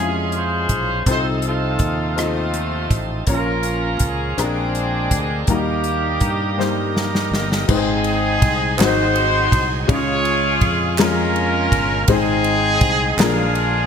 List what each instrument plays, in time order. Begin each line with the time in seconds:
Already playing: fingered electric bass F2, grand piano C#3 G#3 C#4 E4 F4 G#4 C#5 F5, tonewheel organ F3 G#3 C#4 G#4, french horn section F3 G#3 C#4 F4, horn section C#4 F4 G#4
0.03 grand piano F4
0.32 horn section F4 G#4 C5, closed hi-hat
0.69 fingered electric bass B1, kick, closed hi-hat
1.05 fingered electric bass C2, grand piano C3 C4 D#4 F4 A4 C5, tonewheel organ F3 C4 D#4 A4, french horn section A3 C4 D#4, horn section A4, kick, closed hi-hat
1.09 horn section D#4 C5
1.42 closed hi-hat
1.47 horn section D#4 F4 A4
1.79 fingered electric bass D#2, kick, closed hi-hat
2.16 grand piano C4 D#4 F4 A4 D#5, cross-stick, closed hi-hat
2.21 horn section A3 F4
2.54 closed hi-hat
2.91 fingered electric bass A1, kick, closed hi-hat
3.27 fingered electric bass A#1, grand piano A#2 A#3 C#4 F4 A#4 C#5, tonewheel organ F3 A#3 C#4 A#4, french horn section A#3 C#4 F4, kick, closed hi-hat
3.32 horn section C#4 F4 A#4
3.63 closed hi-hat
3.99 fingered electric bass C#2, kick, closed hi-hat
4.06 horn section G#4
4.37 fingered electric bass A#1, grand piano A#2 C4 D4 F4 G#4 A#4, tonewheel organ G#3 C4 D4 A4, french horn section G#3 C4 D4, cross-stick, closed hi-hat
4.42 horn section C4 D4 G#4, tonewheel organ A#4
4.75 closed hi-hat
5.11 fingered electric bass D2, kick, closed hi-hat
5.47 fingered electric bass D#2, french horn section D#3 G3 A#3 D#4, grand piano D#3 G3 A#3 D#4 F#4 A#4, tonewheel organ G3 A#3 D#4 A#4, kick, closed hi-hat
5.51 horn section A#3 D#4 G4
5.56 grand piano G4
5.84 closed hi-hat
6.20 fingered electric bass G2, kick, closed hi-hat
6.58 grand piano G3 A#3 D#4 G4 C5, snare
6.62 horn section D#4 G4 A#4
6.96 snare
7.15 snare
7.31 fingered electric bass G1, snare
7.52 snare
7.68 fingered electric bass G#1, grand piano G#2 G#3 C4 D#4 G#4 B4, tonewheel organ C4 D#4 G#4, horn section C4 D#4, kick, crash
7.73 horn section G#4, grand piano C5
8.04 ride
8.42 fingered electric bass C2, kick, ride
8.77 fingered electric bass G#1, grand piano G#2 C4 D#4 F#4 G#4 A#4, tonewheel organ F#3 G#3 C4 D#4 G#4, horn section F#4, snare, clap, ride
8.81 horn section D#4 C5
8.86 grand piano C5
9.15 ride
9.52 fingered electric bass C2, kick, ride
9.88 fingered electric bass C#2, grand piano C#3 G#3 C#4 D#4 G#4 C#5, tonewheel organ G#3 C#4 F4, horn section F4 G#4, kick, ride
9.93 grand piano F4, horn section C#5
10.25 ride
10.61 fingered electric bass F2, kick, ride
10.98 grand piano G#3 C#4 F4 G#4 A#4, horn section C#4 F4, snare, clap, ride
11.03 horn section A#4
11.36 ride
11.72 fingered electric bass G1, kick, ride
12.08 fingered electric bass G#1, grand piano G#2 G#3 C4 D#4 G#4 C5, tonewheel organ G#3 C4 D#4, kick, ride
12.12 horn section C4 D#4 G#4
12.44 ride
12.81 fingered electric bass C2, kick, ride
13.17 fingered electric bass A#1, grand piano A#2 A#3 D4 F4 G#4 A#4, tonewheel organ D3 F3 G#3 A#3 F4, snare, clap, ride
13.22 horn section D4 F4 G#4
13.55 ride